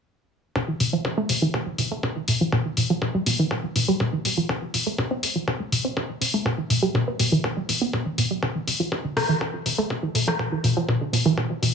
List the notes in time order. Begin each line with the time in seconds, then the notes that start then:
0.56 C3, kick
0.68 E3
0.80 C3, open hi-hat
0.93 F3
1.05 C3, kick
1.18 A3
1.29 C3, open hi-hat
1.42 E3
1.54 C3, kick
1.66 F3
1.78 C3, open hi-hat
1.92 A3
2.03 C3, kick
2.16 E3
2.28 B2, open hi-hat
2.41 F3
2.52 B2, kick
2.66 E3
2.77 B2, open hi-hat
2.90 F3
3.02 B2, kick
3.15 G3
3.26 B2, open hi-hat
3.39 E3
3.51 B2, kick
3.64 F3
3.76 B2, open hi-hat
3.88 G3
4.00 B2, kick
4.13 E3
4.25 B2, open hi-hat
4.37 F3
4.49 C3, kick
4.62 F3
4.74 C3, open hi-hat
4.87 A3
4.98 C3, kick
5.11 C4
5.23 C3, open hi-hat
5.36 F3
5.47 C3, kick
5.60 A3
5.72 C3, open hi-hat
5.85 C4
5.96 C3, kick
6.10 F3
6.21 C3, open hi-hat
6.34 A3
6.45 B2, kick
6.58 E3
6.70 B2, open hi-hat
6.83 G3
6.95 B2, kick
7.08 B3
7.20 B2, open hi-hat
7.32 E3
7.44 B2, kick
7.57 G3
7.69 B2, open hi-hat
7.82 B3
7.93 B2, kick
8.06 E3
8.18 B2, open hi-hat
8.31 G3
8.43 C3, kick
8.55 E3
8.67 C3, open hi-hat
8.80 F3
8.92 C3, kick
9.05 D3
9.17 C3, cross-stick, open hi-hat
9.29 E3
9.41 C3, kick
9.54 F3
9.66 C3, open hi-hat
9.78 A3
9.90 C3, kick
10.03 E3
10.15 B2, open hi-hat
10.27 F3, cross-stick
10.39 B2, kick
10.52 E3
10.64 B2, open hi-hat
10.77 F3
10.88 B2, kick
11.01 D3
11.13 B2, open hi-hat
11.26 E3
11.38 B2, kick
11.50 F3
11.62 B2, open hi-hat